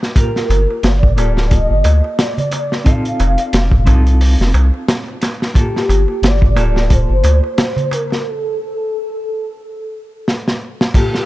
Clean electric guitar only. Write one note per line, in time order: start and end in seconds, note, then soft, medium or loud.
0.00 0.12 C4 medium
0.00 0.13 D#4 medium
0.00 0.13 F4 medium
0.00 0.13 A4 medium
0.15 1.13 A#3 medium
0.15 1.14 F4 medium
0.15 1.14 G4 medium
0.15 1.14 A#4 medium
1.16 2.82 A#3 medium
1.16 2.82 F4 medium
1.16 2.83 G4 medium
1.16 2.83 A4 medium
2.84 3.83 C4 medium
2.84 3.83 D#4 medium
2.84 3.83 F4 medium
2.84 3.84 A4 medium
3.86 5.51 C4 medium
3.86 5.52 D#4 medium
3.86 5.52 F4 medium
3.86 5.52 A4 medium
5.54 6.52 A#3 medium
5.54 6.53 F4 medium
5.54 6.53 G4 medium
5.54 6.54 A4 medium
6.56 8.21 A#3 medium
6.56 8.21 F4 medium
6.56 8.22 G4 medium
6.56 8.22 A4 medium
10.94 11.26 A#3 medium
10.94 11.26 F4 medium
10.94 11.26 G4 medium
10.94 11.26 A4 medium